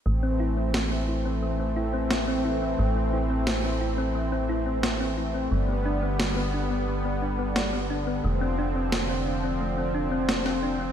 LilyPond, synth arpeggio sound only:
\new Staff \with { instrumentName = "Synth arpeggio sound" } { \time 4/4 \key a \minor \tempo 4 = 88 a16 c'16 e'16 c'16 a16 c'16 e'16 c'16 a16 c'16 e'16 c'16 a16 c'16 e'16 c'16 | a16 c'16 e'16 c'16 a16 c'16 e'16 c'16 a16 c'16 e'16 c'16 a16 c'16 e'16 c'16 | g16 b16 d'16 b16 g16 b16 d'16 b16 g16 b16 d'16 b16 g16 b16 d'16 b16 | a16 c'16 d'16 c'16 a16 c'16 d'16 c'16 a16 c'16 d'16 c'16 a16 c'16 d'16 c'16 | }